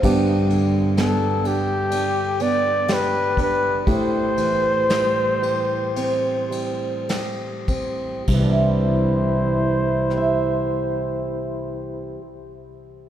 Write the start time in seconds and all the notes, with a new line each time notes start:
0.02 G2 D3 B3 D4 G4, kick, ride
0.50 D3, ride
0.97 B3 A4, snare, ride
1.44 D4 G4, ride
1.91 D4, ride
2.40 B3 D5, ride
2.88 G4, snare, ride
2.93 B4
3.37 D4, kick, ride
3.42 B4
3.87 A2 G4, kick, ride
3.92 C5
4.37 E3, ride
4.89 G3, snare, ride
5.42 G4, ride
5.96 C4, ride
6.51 G3, ride
7.09 G4, snare, ride
7.68 C4, kick, ride
8.28 C2 C3 E4 C5, kick, crash
8.34 E3
8.39 G3
8.44 D4
8.49 E4
10.10 G4, cross-stick
10.17 E5